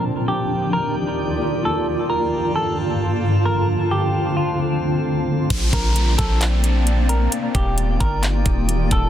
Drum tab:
CC |--------|--------|--------|x-------|
HH |--------|--------|--------|xxxxxxxx|
CP |--------|--------|--------|----x---|
BD |--------|--------|--------|oo-o----|

CC |--------|
HH |xxxxxxxx|
CP |----x---|
BD |-o-o-o-o|